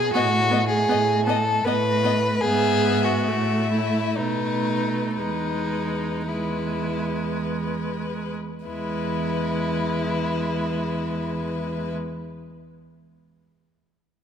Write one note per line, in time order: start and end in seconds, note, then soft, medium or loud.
0.00 0.13 G#4 loud
0.14 0.81 A2 medium
0.14 0.22 B3 medium
0.14 0.68 F#4 medium
0.14 0.24 D#5 medium
0.51 0.59 B3 medium
0.51 0.61 D#5 medium
0.68 1.25 G#4 medium
0.89 1.56 A2 medium
0.89 0.97 B3 medium
0.89 0.99 D#5 soft
1.26 1.35 B3 soft
1.26 1.66 A4 medium
1.26 1.37 D#5 medium
1.65 2.35 A2 medium
1.65 1.74 B3 medium
1.65 2.43 B4 medium
1.65 1.75 D#5 medium
2.04 2.12 B3 medium
2.04 2.13 D#5 medium
2.41 3.29 G#2 medium
2.41 3.29 B3 medium
2.41 3.06 G#4 medium
2.41 3.24 E5 medium
3.05 3.71 F#4 medium
3.27 4.19 A2 medium
3.27 4.17 A3 soft
3.27 4.19 E5 soft
3.72 4.18 E4 medium
4.17 5.19 B2 soft
4.17 5.20 A3 soft
4.17 5.17 D#4 medium
4.17 5.16 B4 soft
5.17 8.38 E2 soft
5.17 6.29 G#3 soft
5.17 6.30 D#4 medium
5.17 6.26 B4 soft
6.28 8.35 G#3 soft
6.28 7.46 E4 soft
6.28 8.35 B4 soft
8.66 11.93 E2 soft
8.66 11.95 G#3 soft
8.66 11.94 E4 medium
8.66 11.92 B4 soft